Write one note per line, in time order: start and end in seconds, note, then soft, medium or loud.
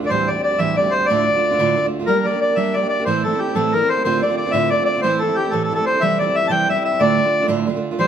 0.00 2.11 D2 medium
0.00 2.11 D3 medium
0.00 0.11 A3 soft
0.00 0.11 D4 soft
0.00 0.10 F4 medium
0.00 0.29 D5 medium
0.00 0.59 E5 medium
0.00 0.19 G5 medium
0.05 0.10 D3 soft
0.05 0.11 D5 medium
0.10 0.29 A2 medium
0.10 0.27 E3 medium
0.10 0.29 G3 medium
0.10 0.30 C4 medium
0.10 0.30 G4 medium
0.10 0.29 C5 medium
0.10 0.93 C5 medium
0.28 0.37 E3 soft
0.28 0.37 G3 soft
0.28 0.37 C4 soft
0.28 0.35 G4 medium
0.28 0.42 D5 medium
0.28 0.36 D5 medium
0.36 0.53 G3 soft
0.36 0.51 C4 soft
0.36 0.50 G4 medium
0.43 0.60 D5 medium
0.43 0.77 D5 medium
0.51 0.58 G3 soft
0.51 0.59 C4 soft
0.51 0.59 G4 soft
0.58 0.77 A2 medium
0.58 0.75 E3 medium
0.58 0.76 G3 medium
0.58 0.76 C4 medium
0.58 0.77 G4 medium
0.58 0.76 E5 loud
0.58 2.32 E5 medium
0.76 0.85 E3 soft
0.76 0.85 G3 soft
0.76 0.84 C4 medium
0.76 0.83 G4 soft
0.76 0.93 D5 medium
0.76 1.07 D5 medium
0.84 1.01 G3 soft
0.84 1.00 C4 medium
0.84 0.99 G4 medium
0.91 1.07 C5 medium
0.91 2.91 C5 medium
1.00 1.10 G3 soft
1.00 1.09 C4 soft
1.00 1.09 G4 soft
1.06 1.27 D2 medium
1.06 1.28 A2 medium
1.06 1.86 D5 medium
1.06 2.41 D5 medium
1.10 1.25 D3 medium
1.10 1.26 A3 medium
1.10 1.27 D4 medium
1.10 1.28 F4 medium
1.27 1.35 D3 soft
1.27 1.35 A3 soft
1.27 1.35 D4 soft
1.27 1.34 F4 medium
1.35 1.52 D3 soft
1.35 1.51 A3 soft
1.35 1.50 D4 soft
1.35 1.49 F4 medium
1.50 1.58 D3 medium
1.50 1.59 A3 medium
1.50 1.59 D4 medium
1.50 1.58 F4 medium
1.59 1.77 D2 medium
1.59 1.77 A2 medium
1.59 1.75 D3 medium
1.59 1.76 A3 medium
1.59 1.77 D4 medium
1.59 1.78 F4 medium
1.76 1.84 D3 medium
1.76 1.85 A3 medium
1.76 1.84 D4 medium
1.76 1.82 F4 medium
1.84 2.01 D3 soft
1.84 2.00 A3 medium
1.84 1.99 D4 soft
1.84 1.98 F4 medium
1.99 2.07 D3 soft
1.99 2.08 A3 soft
1.99 2.08 D4 medium
1.99 2.07 F4 medium
2.06 2.24 G3 medium
2.06 2.25 A#3 medium
2.06 2.26 D4 medium
2.06 2.27 G4 medium
2.06 2.20 A#4 medium
2.06 2.26 A#4 medium
2.20 2.30 A#4 medium
2.25 2.33 G3 medium
2.25 2.34 A#3 medium
2.25 2.34 D4 medium
2.25 2.32 G4 medium
2.25 2.40 D5 medium
2.31 2.48 G4 soft
2.31 3.31 A#4 medium
2.35 2.50 A#3 soft
2.35 2.49 D4 soft
2.41 2.76 D5 medium
2.41 2.57 D5 medium
2.50 2.56 A#3 soft
2.50 2.56 D4 soft
2.50 2.57 G4 soft
2.56 2.74 G3 medium
2.56 2.75 A#3 medium
2.56 2.75 D4 medium
2.56 2.76 G4 medium
2.56 2.75 E5 medium
2.56 4.29 E5 medium
2.74 2.83 G3 soft
2.74 2.83 A#3 medium
2.74 2.83 D4 medium
2.74 2.82 G4 medium
2.74 2.87 D5 medium
2.74 2.90 D5 medium
2.83 3.00 A#3 soft
2.83 2.99 D4 soft
2.83 2.98 G4 medium
2.89 3.04 D5 medium
2.89 4.22 D5 medium
2.99 3.07 A#3 soft
2.99 3.07 D4 soft
2.99 3.07 G4 medium
3.05 3.25 A2 medium
3.05 3.24 E3 medium
3.05 3.25 A3 medium
3.05 3.25 C4 medium
3.05 3.25 E4 medium
3.05 3.23 C5 medium
3.05 3.89 C5 medium
3.24 3.32 E3 medium
3.24 3.33 A3 medium
3.24 3.33 C4 soft
3.24 3.40 A4 medium
3.24 3.55 A4 medium
3.28 3.32 E4 medium
3.33 3.49 A3 medium
3.33 3.49 C4 soft
3.33 3.47 E4 medium
3.39 3.55 G4 medium
3.39 5.38 G4 medium
3.48 3.55 A3 soft
3.48 3.55 C4 soft
3.48 3.56 E4 medium
3.55 3.73 A2 medium
3.55 3.72 E3 medium
3.55 3.74 A3 medium
3.55 3.73 C4 medium
3.55 3.74 E4 medium
3.55 3.74 A4 medium
3.55 3.80 A4 medium
3.73 3.81 E3 medium
3.73 3.81 A3 medium
3.73 3.82 C4 soft
3.73 3.79 E4 medium
3.73 3.89 A#4 medium
3.73 5.28 A#4 medium
3.80 3.96 A3 medium
3.80 3.97 C4 soft
3.80 3.95 E4 medium
3.89 4.03 C5 loud
3.89 4.04 C5 medium
3.96 4.05 A3 medium
3.96 4.05 C4 soft
3.96 4.04 E4 medium
4.04 4.23 D2 medium
4.04 4.23 A2 medium
4.04 4.21 D3 medium
4.04 4.22 A3 medium
4.04 4.23 C4 medium
4.04 4.23 F4 medium
4.04 4.21 C5 loud
4.04 5.04 C5 medium
4.22 4.30 D3 medium
4.22 4.31 A3 medium
4.22 4.30 C4 medium
4.22 4.28 F4 soft
4.22 4.38 D5 medium
4.22 4.36 D5 medium
4.30 4.47 D3 soft
4.30 4.46 A3 medium
4.30 4.46 C4 medium
4.30 4.44 F4 medium
4.37 4.52 D5 medium
4.37 4.72 D5 medium
4.46 4.52 D3 soft
4.46 4.53 A3 soft
4.46 4.53 C4 medium
4.46 4.53 F4 medium
4.51 4.72 D2 medium
4.51 4.72 A2 medium
4.51 4.70 D3 medium
4.51 4.70 A3 medium
4.51 4.72 C4 medium
4.51 4.72 F4 medium
4.51 4.70 E5 loud
4.51 6.02 E5 medium
4.70 4.79 D3 soft
4.70 4.80 A3 medium
4.70 4.80 C4 medium
4.70 4.78 F4 medium
4.70 4.83 D5 medium
4.70 4.87 D5 medium
4.80 4.97 D3 soft
4.80 4.96 A3 soft
4.80 4.95 C4 medium
4.80 4.94 F4 medium
4.85 5.01 D5 medium
4.85 6.20 D5 medium
4.96 5.03 D3 soft
4.96 5.03 A3 medium
4.96 5.03 C4 soft
4.96 5.03 F4 medium
5.02 5.21 A2 medium
5.02 5.21 E3 medium
5.02 5.21 A3 medium
5.02 5.22 C4 medium
5.02 5.23 E4 medium
5.02 5.19 C5 loud
5.02 5.86 C5 medium
5.19 5.30 E3 soft
5.19 5.30 A3 medium
5.19 5.36 A4 medium
5.19 5.53 A4 medium
5.24 5.28 C4 soft
5.24 5.27 E4 medium
5.29 5.46 A3 soft
5.29 5.45 C4 soft
5.29 5.43 E4 medium
5.35 5.52 G4 medium
5.35 7.74 G4 medium
5.45 5.52 A3 soft
5.45 5.53 C4 soft
5.45 5.53 E4 medium
5.51 5.71 A2 medium
5.51 5.69 E3 medium
5.51 5.70 A3 medium
5.51 5.71 C4 medium
5.51 5.71 E4 medium
5.51 5.63 A4 medium
5.51 5.76 A4 medium
5.64 5.73 A4 medium
5.70 5.78 E3 medium
5.70 5.79 A3 soft
5.70 5.78 C4 medium
5.70 5.77 E4 medium
5.75 5.93 E4 soft
5.75 5.85 A4 medium
5.75 7.96 A4 medium
5.80 5.95 A3 soft
5.80 5.94 C4 soft
5.86 6.02 C5 loud
5.86 7.85 C5 medium
5.94 6.02 A3 soft
5.94 6.02 C4 soft
5.94 6.02 E4 soft
6.01 6.20 C3 medium
6.01 6.18 E3 medium
6.01 6.19 G3 medium
6.01 6.19 C4 medium
6.01 6.21 E4 medium
6.01 6.18 E5 loud
6.01 6.36 E5 medium
6.19 6.28 E3 soft
6.19 6.28 G3 medium
6.19 6.27 C4 soft
6.19 6.25 E4 medium
6.19 6.36 D5 medium
6.19 7.01 D5 medium
6.26 6.44 G3 soft
6.26 6.42 C4 soft
6.26 6.41 E4 medium
6.35 6.48 E5 loud
6.35 6.70 E5 medium
6.42 6.49 G3 soft
6.42 6.50 C4 soft
6.42 6.50 E4 soft
6.48 6.69 C3 medium
6.48 6.67 E3 medium
6.48 6.68 G3 medium
6.48 6.69 C4 medium
6.48 6.69 E4 medium
6.48 6.68 G5 loud
6.48 6.52 A5 medium
6.52 8.07 G5 medium
6.68 6.77 E3 soft
6.68 6.77 G3 medium
6.68 6.76 C4 medium
6.68 6.83 E5 medium
6.68 6.85 E5 medium
6.76 6.93 G3 soft
6.76 6.92 C4 soft
6.76 6.90 E4 soft
6.85 7.01 E5 medium
6.85 8.07 E5 medium
6.91 7.00 G3 soft
6.91 7.01 C4 soft
6.91 7.00 E4 medium
7.00 7.19 D2 medium
7.00 7.19 A2 medium
7.00 7.15 D3 medium
7.00 7.17 A3 medium
7.00 7.17 D4 medium
7.00 7.18 F4 medium
7.00 7.47 D5 loud
7.00 8.07 D5 medium
7.17 7.26 D3 medium
7.17 7.25 A3 medium
7.17 7.24 D4 medium
7.17 7.23 F4 soft
7.24 7.42 D3 soft
7.24 7.41 A3 soft
7.24 7.40 D4 soft
7.24 7.39 F4 medium
7.40 7.47 D3 soft
7.40 7.48 A3 medium
7.40 7.48 D4 medium
7.40 7.48 F4 medium
7.48 7.68 D2 medium
7.48 7.68 A2 medium
7.48 7.65 D3 medium
7.48 7.67 A3 medium
7.48 7.68 D4 medium
7.48 7.68 F4 loud
7.67 7.76 D3 medium
7.67 7.75 A3 medium
7.67 7.75 D4 medium
7.67 7.73 F4 medium
7.74 7.92 D3 medium
7.74 7.92 A3 medium
7.74 7.91 D4 medium
7.74 7.90 F4 medium
7.91 7.98 D3 soft
7.91 7.99 A3 soft
7.91 7.99 D4 soft
7.91 7.99 F4 medium
7.98 8.07 A2 medium
7.98 8.07 E3 medium
7.98 8.07 G3 medium
7.98 8.07 C4 medium
7.98 8.07 G4 medium
7.98 8.07 C5 loud
7.98 8.07 C5 medium